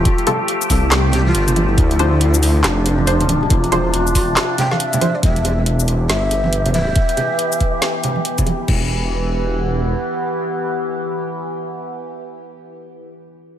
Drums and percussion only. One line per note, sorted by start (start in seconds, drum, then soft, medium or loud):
0.05 kick loud
0.05 closed hi-hat medium
0.18 closed hi-hat soft
0.27 closed hi-hat medium
0.27 high bongo medium
0.27 low conga medium
0.48 closed hi-hat medium
0.62 shaker medium
0.70 kick medium
0.70 open hi-hat loud
0.70 shaker medium
0.92 snare loud
0.92 clap medium
0.92 closed hi-hat medium
0.92 high bongo medium
1.13 closed hi-hat medium
1.13 low conga medium
1.26 high conga medium
1.35 closed hi-hat medium
1.47 closed hi-hat soft
1.47 low conga medium
1.47 shaker medium
1.56 closed hi-hat medium
1.56 high bongo medium
1.56 high conga medium
1.78 kick loud
1.78 closed hi-hat medium
1.91 closed hi-hat soft
1.99 closed hi-hat medium
1.99 high bongo medium
2.21 closed hi-hat medium
2.34 shaker medium
2.43 open hi-hat loud
2.43 shaker medium
2.64 snare loud
2.64 clap medium
2.64 closed hi-hat medium
2.85 closed hi-hat medium
2.85 high bongo soft
2.98 high conga medium
3.07 closed hi-hat medium
3.21 closed hi-hat soft
3.21 low conga medium
3.29 closed hi-hat medium
3.29 high conga medium
3.43 high bongo medium
3.50 kick loud
3.50 closed hi-hat medium
3.64 closed hi-hat soft
3.72 closed hi-hat medium
3.72 high bongo medium
3.72 low conga medium
3.94 closed hi-hat medium
4.07 shaker medium
4.15 kick medium
4.15 open hi-hat loud
4.15 shaker medium
4.37 snare loud
4.37 clap medium
4.37 closed hi-hat medium
4.37 high bongo medium
4.58 closed hi-hat medium
4.58 low conga medium
4.71 snare soft
4.71 high conga medium
4.80 closed hi-hat medium
4.93 closed hi-hat soft
4.93 low conga loud
4.93 shaker medium
5.01 closed hi-hat medium
5.01 high bongo medium
5.01 high conga medium
5.23 kick loud
5.23 closed hi-hat medium
5.36 closed hi-hat soft
5.45 closed hi-hat medium
5.45 high bongo medium
5.66 closed hi-hat medium
5.80 shaker medium
5.88 closed hi-hat medium
6.10 snare loud
6.10 closed hi-hat medium
6.31 closed hi-hat medium
6.31 high bongo soft
6.44 high conga medium
6.53 closed hi-hat medium
6.66 closed hi-hat soft
6.66 low conga medium
6.74 closed hi-hat medium
6.74 high conga medium
6.87 high bongo soft
6.96 kick loud
6.96 closed hi-hat medium
7.09 closed hi-hat soft
7.17 closed hi-hat soft
7.17 high bongo medium
7.17 low conga medium
7.39 closed hi-hat medium
7.52 shaker medium
7.61 kick medium
7.61 closed hi-hat medium
7.82 snare loud
7.82 closed hi-hat medium
7.82 high bongo medium
8.04 closed hi-hat medium
8.04 low conga medium
8.16 high conga medium
8.25 closed hi-hat medium
8.38 kick medium
8.38 closed hi-hat soft
8.38 low conga medium
8.38 shaker medium
8.46 closed hi-hat soft
8.46 high bongo medium
8.46 high conga medium
8.68 kick loud
8.68 crash medium